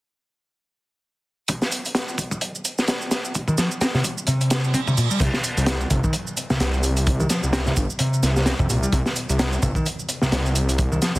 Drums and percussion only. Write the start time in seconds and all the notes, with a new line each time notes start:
1.48 kick, closed hi-hat, shaker
1.62 snare, shaker
1.72 closed hi-hat, shaker
1.85 closed hi-hat, shaker
1.95 snare, closed hi-hat, shaker
2.08 shaker
2.18 kick, closed hi-hat, shaker
2.31 kick, shaker
2.41 closed hi-hat, shaker
2.55 shaker
2.65 closed hi-hat, shaker
2.78 snare, shaker
2.88 snare, closed hi-hat, shaker
3.01 shaker
3.11 snare, closed hi-hat, shaker
3.25 shaker
3.35 kick, closed hi-hat, shaker
3.48 kick, shaker
3.58 snare, closed hi-hat, shaker
3.71 shaker
3.81 snare, closed hi-hat, shaker
3.94 snare, shaker
4.04 kick, closed hi-hat, shaker
4.18 shaker
4.27 closed hi-hat, shaker
4.41 closed hi-hat, shaker
4.50 snare, closed hi-hat, shaker
4.64 shaker
4.74 kick, closed hi-hat, shaker
4.88 kick, shaker
4.97 closed hi-hat, shaker
5.11 shaker
5.20 kick, closed hi-hat, crash, shaker
5.34 snare, shaker
5.44 closed hi-hat, shaker
5.57 closed hi-hat, shaker
5.66 snare, closed hi-hat, shaker
5.81 shaker
5.90 kick, closed hi-hat, shaker
6.04 kick, shaker
6.13 closed hi-hat, shaker
6.27 shaker
6.37 closed hi-hat, shaker
6.50 snare, shaker
6.60 snare, closed hi-hat, shaker
6.74 shaker
6.83 closed hi-hat, shaker
6.97 closed hi-hat, shaker
7.07 kick, closed hi-hat, shaker
7.20 shaker
7.29 snare, closed hi-hat, shaker
7.43 shaker
7.53 snare, closed hi-hat, shaker
7.66 snare, shaker
7.77 kick, closed hi-hat, shaker
7.90 shaker
7.99 closed hi-hat, shaker
8.13 shaker
8.23 snare, closed hi-hat, shaker
8.36 snare, shaker
8.46 snare, closed hi-hat, shaker
8.59 kick, shaker
8.70 closed hi-hat, shaker
8.83 shaker
8.92 kick, closed hi-hat, shaker
9.06 snare, shaker
9.16 closed hi-hat, shaker
9.29 closed hi-hat, shaker
9.39 snare, closed hi-hat, shaker
9.53 shaker
9.63 kick, closed hi-hat, shaker
9.75 kick, shaker
9.86 closed hi-hat, shaker
9.99 shaker
10.09 closed hi-hat, shaker
10.22 snare, shaker
10.32 snare, closed hi-hat, shaker
10.46 shaker
10.55 closed hi-hat, shaker
10.69 closed hi-hat, shaker
10.78 kick, closed hi-hat, shaker
10.92 shaker
11.02 snare, closed hi-hat, shaker
11.15 shaker